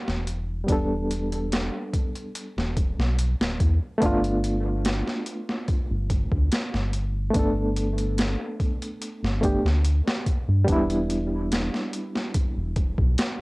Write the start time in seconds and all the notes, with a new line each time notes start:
Already playing: G3 B3 D4 E4
0.08 E1, snare
0.27 closed hi-hat
0.64 G3 B3
0.68 E1 D4 A4, kick, closed hi-hat
1.11 closed hi-hat
1.32 closed hi-hat
1.52 snare, closed hi-hat
1.93 kick, closed hi-hat
2.15 closed hi-hat
2.35 closed hi-hat
2.57 E1, snare
2.77 kick, closed hi-hat
2.98 B1, snare
3.18 closed hi-hat
3.40 D1, snare
3.60 E2, kick, closed hi-hat
3.98 G1 A3 B3, kick, closed hi-hat
4.03 D4 F4
4.24 closed hi-hat
4.44 closed hi-hat
4.85 snare, closed hi-hat
5.07 snare
5.26 closed hi-hat
5.49 snare
5.68 kick, closed hi-hat
5.90 G1
6.10 kick, closed hi-hat
6.32 D2, kick
6.52 snare, closed hi-hat
6.74 G1, snare
6.93 closed hi-hat
7.30 A3 B3
7.34 G1 D4, kick, closed hi-hat
7.39 A4
7.76 closed hi-hat
7.98 closed hi-hat
8.18 snare, closed hi-hat
8.60 kick, closed hi-hat
8.82 closed hi-hat
9.02 closed hi-hat
9.23 G1, snare
9.41 A3 B3 D4, kick, closed hi-hat
9.45 G4
9.65 D2, snare
9.85 closed hi-hat
10.08 snare
10.26 kick, closed hi-hat
10.48 G2
10.64 E1 G3 B3, kick, closed hi-hat
10.69 D4 E4
10.90 closed hi-hat
11.10 closed hi-hat
11.52 snare, closed hi-hat
11.74 snare
11.93 closed hi-hat
12.16 snare
12.34 kick, closed hi-hat
12.57 E1
12.76 kick, closed hi-hat
12.98 B1, kick
13.18 snare, closed hi-hat